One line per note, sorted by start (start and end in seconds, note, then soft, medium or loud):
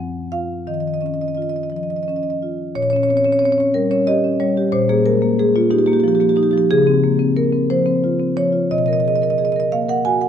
0.00 0.63 F#2 medium
0.00 0.18 F3 soft
0.00 0.53 C4 soft
0.00 0.29 F#5 medium
0.32 0.67 F4 soft
0.32 0.66 F5 medium
0.67 2.71 D#3 soft
0.67 0.74 D#5 medium
0.74 0.80 D#5 medium
0.80 0.87 D#5 soft
0.87 0.94 D#5 soft
0.94 1.01 D#5 medium
1.01 1.58 C#4 soft
1.01 1.06 D#5 soft
1.06 1.14 D#5 medium
1.14 1.21 D#5 soft
1.21 1.28 D#5 medium
1.28 1.35 D#5 soft
1.35 1.93 F4 soft
1.35 1.42 D#5 medium
1.42 1.49 D#5 soft
1.49 1.56 D#5 medium
1.56 1.63 D#5 soft
1.63 1.70 D#5 medium
1.70 2.27 F3 soft
1.70 1.76 D#5 soft
1.76 1.83 D#5 medium
1.83 1.90 D#5 soft
1.90 1.96 D#5 medium
1.96 2.03 D#5 soft
2.03 2.09 D#5 medium
2.08 2.62 C#4 soft
2.08 2.16 D#5 soft
2.16 2.23 D#5 medium
2.23 2.30 D#5 soft
2.30 2.37 D#5 medium
2.42 2.76 F4 soft
2.75 4.70 A#2 medium
2.75 2.83 C#5 medium
2.83 2.90 C#5 medium
2.90 3.19 C#4 medium
2.90 2.96 C#5 medium
2.96 3.03 C#5 medium
3.03 3.10 C#5 medium
3.09 3.25 C4 soft
3.09 3.17 C#5 medium
3.17 3.25 C#5 medium
3.25 3.52 C#4 medium
3.25 3.32 C#5 medium
3.32 3.39 C#5 medium
3.39 3.59 C4 soft
3.39 3.45 C#5 medium
3.45 3.52 C#5 medium
3.52 3.60 C#5 medium
3.58 3.85 C#4 medium
3.58 3.71 C#5 medium
3.74 4.01 G3 medium
3.74 3.91 A#4 medium
3.91 4.17 C#4 medium
3.91 4.08 C#5 medium
4.07 4.34 G4 medium
4.07 4.39 D#5 loud
4.24 4.51 C#4 soft
4.40 4.67 G3 medium
4.40 4.72 C#5 medium
4.57 4.74 G4 medium
4.72 6.65 A#2 medium
4.72 4.89 C5 medium
4.89 5.16 A#3 medium
4.89 5.06 G#4 medium
5.06 5.23 G#3 medium
5.06 5.37 A#4 medium
5.22 5.48 A#3 medium
5.39 5.55 G#3 soft
5.39 5.55 G#4 medium
5.56 5.82 A#3 medium
5.56 5.72 F4 medium
5.70 5.97 D#4 medium
5.70 5.79 G4 medium
5.79 5.86 G4 medium
5.86 6.14 A#3 medium
5.86 5.93 G4 medium
5.93 6.00 G4 medium
6.00 6.30 F3 medium
6.00 6.08 G4 medium
6.08 6.15 G4 medium
6.15 6.21 G4 medium
6.20 6.47 A#3 medium
6.20 6.29 G4 medium
6.29 6.36 G4 medium
6.36 6.63 D#4 medium
6.36 6.43 G4 medium
6.43 6.51 G4 medium
6.51 6.70 F3 medium
6.51 6.58 G4 medium
6.58 6.66 G4 medium
6.71 8.66 C#3 medium
6.71 7.33 G#4 loud
6.87 7.13 C4 medium
7.04 7.19 A#3 medium
7.19 7.45 C4 medium
7.37 7.52 A#3 soft
7.37 7.68 A#4 medium
7.53 7.79 C4 medium
7.70 7.96 F3 medium
7.70 8.34 C5 medium
7.86 8.12 C4 medium
8.04 8.30 F4 medium
8.20 8.46 C4 soft
8.37 8.63 F3 medium
8.37 8.69 C#5 medium
8.52 8.69 F4 medium
8.71 10.29 B2 medium
8.71 8.78 D#5 medium
8.78 8.86 D#5 medium
8.86 9.14 A#4 medium
8.86 8.93 D#5 medium
8.93 9.00 D#5 medium
9.00 9.08 D#5 medium
9.05 9.21 G#4 soft
9.05 9.15 D#5 medium
9.15 9.23 D#5 medium
9.22 9.48 A#4 medium
9.22 9.30 D#5 medium
9.30 9.38 D#5 medium
9.38 9.55 G#4 soft
9.38 9.45 D#5 medium
9.45 9.52 D#5 medium
9.52 9.82 A#4 medium
9.52 9.60 D#5 medium
9.60 9.68 D#5 medium
9.72 9.99 A#3 soft
9.72 9.88 F5 medium
9.89 10.15 A#4 medium
9.89 10.05 F#5 medium
10.05 10.29 F#4 medium
10.05 10.22 G#5 medium
10.21 10.29 A#4 soft
10.21 10.29 F#5 medium